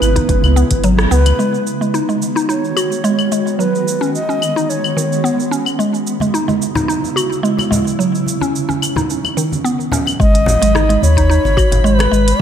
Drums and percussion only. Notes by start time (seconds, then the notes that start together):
0.02 claves, shaker
0.16 kick, closed hi-hat, muted conga, high conga, shaker
0.29 kick, closed hi-hat, shaker
0.44 muted conga, claves, shaker
0.57 shaker
0.71 kick, closed hi-hat, high conga, shaker
0.84 closed hi-hat, shaker
0.99 cross-stick, shaker
1.12 shaker
1.26 closed hi-hat, muted conga, claves, shaker
1.39 shaker
1.54 shaker
1.67 shaker
1.82 shaker
1.95 shaker
2.09 shaker
2.22 shaker
2.37 shaker
2.50 shaker
2.64 shaker
2.77 claves, shaker
2.92 shaker
3.05 shaker
3.19 claves, shaker
3.32 shaker
3.47 shaker
3.60 shaker
3.75 shaker
3.88 shaker
4.03 shaker
4.15 shaker
4.30 shaker
4.42 claves, shaker
4.58 shaker
4.70 shaker
4.84 claves, shaker
4.98 shaker
5.13 shaker
5.25 shaker
5.40 shaker
5.53 shaker
5.66 claves, shaker
5.80 shaker
5.94 shaker
6.07 shaker
6.20 high conga, shaker
6.35 shaker
6.48 muted conga, high conga, shaker
6.62 shaker
6.75 high conga, low conga, shaker
6.90 shaker
7.04 muted conga, shaker
7.17 claves, shaker
7.32 shaker
7.45 shaker
7.59 muted conga, claves, shaker
7.72 low conga, shaker
7.87 shaker
8.00 shaker
8.15 shaker
8.26 muted conga, shaker
8.41 high conga, shaker
8.56 shaker
8.69 muted conga, high conga, shaker
8.82 claves, shaker
8.96 muted conga, high conga, low conga, shaker
9.10 shaker
9.24 muted conga, claves, shaker
9.38 shaker
9.52 high conga, shaker
9.66 shaker
9.80 shaker
9.92 low conga, shaker
10.07 muted conga, claves, shaker
10.20 kick, shaker
10.35 closed hi-hat, shaker
10.46 low conga, shaker
10.62 closed hi-hat, shaker
10.75 cross-stick, high conga, shaker
10.90 closed hi-hat, muted conga, shaker
11.02 high conga, shaker
11.17 kick, closed hi-hat, shaker
11.31 shaker
11.45 muted conga, shaker
11.57 kick, claves, shaker
11.72 closed hi-hat, low conga, shaker
11.86 shaker
11.99 cross-stick, closed hi-hat, muted conga, claves, shaker
12.13 shaker
12.28 closed hi-hat, shaker